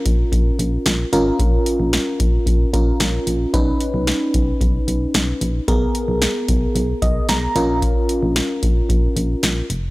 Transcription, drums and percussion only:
0, 0, Header, 1, 2, 480
1, 0, Start_track
1, 0, Tempo, 535714
1, 1250, Time_signature, 4, 2, 24, 8
1, 8876, End_track
2, 0, Start_track
2, 0, Title_t, "Drums"
2, 50, Note_on_c, 9, 42, 71
2, 52, Note_on_c, 9, 36, 84
2, 140, Note_off_c, 9, 42, 0
2, 141, Note_off_c, 9, 36, 0
2, 289, Note_on_c, 9, 36, 82
2, 293, Note_on_c, 9, 42, 66
2, 378, Note_off_c, 9, 36, 0
2, 382, Note_off_c, 9, 42, 0
2, 532, Note_on_c, 9, 42, 69
2, 622, Note_off_c, 9, 42, 0
2, 768, Note_on_c, 9, 42, 73
2, 772, Note_on_c, 9, 38, 116
2, 858, Note_off_c, 9, 42, 0
2, 861, Note_off_c, 9, 38, 0
2, 1011, Note_on_c, 9, 42, 68
2, 1100, Note_off_c, 9, 42, 0
2, 1250, Note_on_c, 9, 36, 102
2, 1251, Note_on_c, 9, 42, 70
2, 1339, Note_off_c, 9, 36, 0
2, 1340, Note_off_c, 9, 42, 0
2, 1490, Note_on_c, 9, 42, 66
2, 1579, Note_off_c, 9, 42, 0
2, 1730, Note_on_c, 9, 42, 64
2, 1731, Note_on_c, 9, 38, 105
2, 1819, Note_off_c, 9, 42, 0
2, 1820, Note_off_c, 9, 38, 0
2, 1970, Note_on_c, 9, 42, 70
2, 1972, Note_on_c, 9, 36, 83
2, 2060, Note_off_c, 9, 42, 0
2, 2061, Note_off_c, 9, 36, 0
2, 2209, Note_on_c, 9, 36, 83
2, 2213, Note_on_c, 9, 42, 65
2, 2299, Note_off_c, 9, 36, 0
2, 2302, Note_off_c, 9, 42, 0
2, 2451, Note_on_c, 9, 36, 80
2, 2452, Note_on_c, 9, 42, 70
2, 2541, Note_off_c, 9, 36, 0
2, 2542, Note_off_c, 9, 42, 0
2, 2688, Note_on_c, 9, 42, 73
2, 2692, Note_on_c, 9, 38, 114
2, 2778, Note_off_c, 9, 42, 0
2, 2781, Note_off_c, 9, 38, 0
2, 2930, Note_on_c, 9, 42, 67
2, 3020, Note_off_c, 9, 42, 0
2, 3170, Note_on_c, 9, 36, 104
2, 3170, Note_on_c, 9, 42, 69
2, 3259, Note_off_c, 9, 36, 0
2, 3260, Note_off_c, 9, 42, 0
2, 3409, Note_on_c, 9, 42, 63
2, 3499, Note_off_c, 9, 42, 0
2, 3649, Note_on_c, 9, 42, 63
2, 3650, Note_on_c, 9, 38, 104
2, 3739, Note_off_c, 9, 42, 0
2, 3740, Note_off_c, 9, 38, 0
2, 3890, Note_on_c, 9, 42, 69
2, 3892, Note_on_c, 9, 36, 82
2, 3980, Note_off_c, 9, 42, 0
2, 3981, Note_off_c, 9, 36, 0
2, 4129, Note_on_c, 9, 36, 86
2, 4133, Note_on_c, 9, 42, 64
2, 4218, Note_off_c, 9, 36, 0
2, 4222, Note_off_c, 9, 42, 0
2, 4372, Note_on_c, 9, 42, 72
2, 4462, Note_off_c, 9, 42, 0
2, 4609, Note_on_c, 9, 42, 74
2, 4612, Note_on_c, 9, 38, 114
2, 4698, Note_off_c, 9, 42, 0
2, 4702, Note_off_c, 9, 38, 0
2, 4851, Note_on_c, 9, 42, 67
2, 4940, Note_off_c, 9, 42, 0
2, 5090, Note_on_c, 9, 36, 106
2, 5090, Note_on_c, 9, 42, 75
2, 5179, Note_off_c, 9, 36, 0
2, 5180, Note_off_c, 9, 42, 0
2, 5330, Note_on_c, 9, 42, 66
2, 5420, Note_off_c, 9, 42, 0
2, 5570, Note_on_c, 9, 42, 64
2, 5571, Note_on_c, 9, 38, 105
2, 5659, Note_off_c, 9, 42, 0
2, 5660, Note_off_c, 9, 38, 0
2, 5810, Note_on_c, 9, 42, 72
2, 5812, Note_on_c, 9, 36, 81
2, 5900, Note_off_c, 9, 42, 0
2, 5901, Note_off_c, 9, 36, 0
2, 6053, Note_on_c, 9, 42, 64
2, 6143, Note_off_c, 9, 42, 0
2, 6291, Note_on_c, 9, 36, 82
2, 6292, Note_on_c, 9, 42, 70
2, 6381, Note_off_c, 9, 36, 0
2, 6382, Note_off_c, 9, 42, 0
2, 6529, Note_on_c, 9, 42, 74
2, 6532, Note_on_c, 9, 38, 111
2, 6618, Note_off_c, 9, 42, 0
2, 6622, Note_off_c, 9, 38, 0
2, 6771, Note_on_c, 9, 42, 69
2, 6860, Note_off_c, 9, 42, 0
2, 7010, Note_on_c, 9, 36, 109
2, 7010, Note_on_c, 9, 42, 73
2, 7099, Note_off_c, 9, 36, 0
2, 7100, Note_off_c, 9, 42, 0
2, 7250, Note_on_c, 9, 42, 68
2, 7340, Note_off_c, 9, 42, 0
2, 7490, Note_on_c, 9, 42, 63
2, 7491, Note_on_c, 9, 38, 105
2, 7579, Note_off_c, 9, 42, 0
2, 7580, Note_off_c, 9, 38, 0
2, 7730, Note_on_c, 9, 42, 69
2, 7732, Note_on_c, 9, 36, 82
2, 7820, Note_off_c, 9, 42, 0
2, 7821, Note_off_c, 9, 36, 0
2, 7969, Note_on_c, 9, 36, 84
2, 7973, Note_on_c, 9, 42, 65
2, 8059, Note_off_c, 9, 36, 0
2, 8062, Note_off_c, 9, 42, 0
2, 8212, Note_on_c, 9, 42, 70
2, 8302, Note_off_c, 9, 42, 0
2, 8449, Note_on_c, 9, 42, 73
2, 8452, Note_on_c, 9, 38, 112
2, 8538, Note_off_c, 9, 42, 0
2, 8542, Note_off_c, 9, 38, 0
2, 8691, Note_on_c, 9, 42, 66
2, 8781, Note_off_c, 9, 42, 0
2, 8876, End_track
0, 0, End_of_file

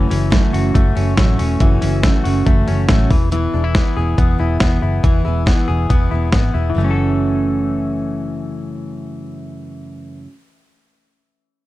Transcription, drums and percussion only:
0, 0, Header, 1, 2, 480
1, 0, Start_track
1, 0, Key_signature, 3, "minor"
1, 0, Tempo, 429799
1, 1792, Time_signature, 4, 2, 24, 8
1, 13024, End_track
2, 0, Start_track
2, 0, Title_t, "Drums"
2, 126, Note_on_c, 9, 46, 76
2, 238, Note_off_c, 9, 46, 0
2, 359, Note_on_c, 9, 36, 121
2, 360, Note_on_c, 9, 38, 114
2, 360, Note_on_c, 9, 42, 61
2, 471, Note_off_c, 9, 36, 0
2, 472, Note_off_c, 9, 38, 0
2, 472, Note_off_c, 9, 42, 0
2, 607, Note_on_c, 9, 46, 58
2, 718, Note_off_c, 9, 46, 0
2, 840, Note_on_c, 9, 36, 99
2, 842, Note_on_c, 9, 42, 69
2, 951, Note_off_c, 9, 36, 0
2, 954, Note_off_c, 9, 42, 0
2, 1080, Note_on_c, 9, 46, 50
2, 1192, Note_off_c, 9, 46, 0
2, 1312, Note_on_c, 9, 38, 102
2, 1317, Note_on_c, 9, 42, 65
2, 1318, Note_on_c, 9, 36, 96
2, 1424, Note_off_c, 9, 38, 0
2, 1429, Note_off_c, 9, 42, 0
2, 1430, Note_off_c, 9, 36, 0
2, 1555, Note_on_c, 9, 46, 62
2, 1667, Note_off_c, 9, 46, 0
2, 1791, Note_on_c, 9, 42, 75
2, 1792, Note_on_c, 9, 36, 109
2, 1902, Note_off_c, 9, 42, 0
2, 1904, Note_off_c, 9, 36, 0
2, 2033, Note_on_c, 9, 46, 73
2, 2144, Note_off_c, 9, 46, 0
2, 2272, Note_on_c, 9, 36, 111
2, 2272, Note_on_c, 9, 38, 108
2, 2272, Note_on_c, 9, 42, 66
2, 2384, Note_off_c, 9, 36, 0
2, 2384, Note_off_c, 9, 38, 0
2, 2384, Note_off_c, 9, 42, 0
2, 2517, Note_on_c, 9, 46, 59
2, 2629, Note_off_c, 9, 46, 0
2, 2753, Note_on_c, 9, 36, 99
2, 2753, Note_on_c, 9, 42, 58
2, 2865, Note_off_c, 9, 36, 0
2, 2865, Note_off_c, 9, 42, 0
2, 2989, Note_on_c, 9, 46, 50
2, 3100, Note_off_c, 9, 46, 0
2, 3223, Note_on_c, 9, 38, 95
2, 3228, Note_on_c, 9, 42, 68
2, 3232, Note_on_c, 9, 36, 104
2, 3335, Note_off_c, 9, 38, 0
2, 3339, Note_off_c, 9, 42, 0
2, 3344, Note_off_c, 9, 36, 0
2, 3467, Note_on_c, 9, 46, 63
2, 3469, Note_on_c, 9, 36, 85
2, 3579, Note_off_c, 9, 46, 0
2, 3580, Note_off_c, 9, 36, 0
2, 3709, Note_on_c, 9, 42, 69
2, 3820, Note_off_c, 9, 42, 0
2, 4186, Note_on_c, 9, 38, 105
2, 4186, Note_on_c, 9, 42, 58
2, 4188, Note_on_c, 9, 36, 104
2, 4298, Note_off_c, 9, 38, 0
2, 4298, Note_off_c, 9, 42, 0
2, 4300, Note_off_c, 9, 36, 0
2, 4670, Note_on_c, 9, 36, 93
2, 4672, Note_on_c, 9, 42, 63
2, 4781, Note_off_c, 9, 36, 0
2, 4783, Note_off_c, 9, 42, 0
2, 5141, Note_on_c, 9, 38, 95
2, 5146, Note_on_c, 9, 42, 57
2, 5150, Note_on_c, 9, 36, 99
2, 5253, Note_off_c, 9, 38, 0
2, 5258, Note_off_c, 9, 42, 0
2, 5262, Note_off_c, 9, 36, 0
2, 5627, Note_on_c, 9, 36, 106
2, 5627, Note_on_c, 9, 42, 71
2, 5739, Note_off_c, 9, 36, 0
2, 5739, Note_off_c, 9, 42, 0
2, 6107, Note_on_c, 9, 36, 107
2, 6108, Note_on_c, 9, 38, 99
2, 6108, Note_on_c, 9, 42, 62
2, 6219, Note_off_c, 9, 36, 0
2, 6220, Note_off_c, 9, 38, 0
2, 6220, Note_off_c, 9, 42, 0
2, 6591, Note_on_c, 9, 36, 88
2, 6591, Note_on_c, 9, 42, 61
2, 6703, Note_off_c, 9, 36, 0
2, 6703, Note_off_c, 9, 42, 0
2, 7064, Note_on_c, 9, 38, 85
2, 7069, Note_on_c, 9, 42, 61
2, 7073, Note_on_c, 9, 36, 100
2, 7175, Note_off_c, 9, 38, 0
2, 7180, Note_off_c, 9, 42, 0
2, 7185, Note_off_c, 9, 36, 0
2, 13024, End_track
0, 0, End_of_file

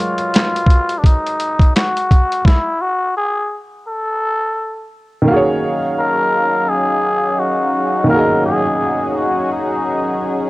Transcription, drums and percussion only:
0, 0, Header, 1, 2, 480
1, 0, Start_track
1, 0, Key_signature, -6, "minor"
1, 0, Tempo, 705882
1, 1665, Time_signature, 4, 2, 24, 8
1, 7139, End_track
2, 0, Start_track
2, 0, Title_t, "Drums"
2, 0, Note_on_c, 9, 42, 65
2, 67, Note_off_c, 9, 42, 0
2, 123, Note_on_c, 9, 42, 41
2, 191, Note_off_c, 9, 42, 0
2, 232, Note_on_c, 9, 42, 80
2, 246, Note_on_c, 9, 38, 110
2, 249, Note_on_c, 9, 39, 90
2, 300, Note_off_c, 9, 42, 0
2, 314, Note_off_c, 9, 38, 0
2, 317, Note_off_c, 9, 39, 0
2, 382, Note_on_c, 9, 42, 47
2, 450, Note_off_c, 9, 42, 0
2, 452, Note_on_c, 9, 36, 94
2, 478, Note_on_c, 9, 42, 61
2, 520, Note_off_c, 9, 36, 0
2, 546, Note_off_c, 9, 42, 0
2, 606, Note_on_c, 9, 42, 46
2, 674, Note_off_c, 9, 42, 0
2, 705, Note_on_c, 9, 36, 77
2, 719, Note_on_c, 9, 42, 74
2, 773, Note_off_c, 9, 36, 0
2, 787, Note_off_c, 9, 42, 0
2, 861, Note_on_c, 9, 42, 40
2, 929, Note_off_c, 9, 42, 0
2, 951, Note_on_c, 9, 42, 59
2, 1019, Note_off_c, 9, 42, 0
2, 1085, Note_on_c, 9, 36, 88
2, 1099, Note_on_c, 9, 42, 42
2, 1153, Note_off_c, 9, 36, 0
2, 1167, Note_off_c, 9, 42, 0
2, 1196, Note_on_c, 9, 42, 61
2, 1201, Note_on_c, 9, 38, 87
2, 1204, Note_on_c, 9, 39, 72
2, 1264, Note_off_c, 9, 42, 0
2, 1269, Note_off_c, 9, 38, 0
2, 1272, Note_off_c, 9, 39, 0
2, 1339, Note_on_c, 9, 42, 46
2, 1407, Note_off_c, 9, 42, 0
2, 1435, Note_on_c, 9, 36, 81
2, 1439, Note_on_c, 9, 42, 51
2, 1503, Note_off_c, 9, 36, 0
2, 1507, Note_off_c, 9, 42, 0
2, 1578, Note_on_c, 9, 42, 42
2, 1646, Note_off_c, 9, 42, 0
2, 1667, Note_on_c, 9, 36, 99
2, 1685, Note_on_c, 9, 38, 75
2, 1735, Note_off_c, 9, 36, 0
2, 1753, Note_off_c, 9, 38, 0
2, 7139, End_track
0, 0, End_of_file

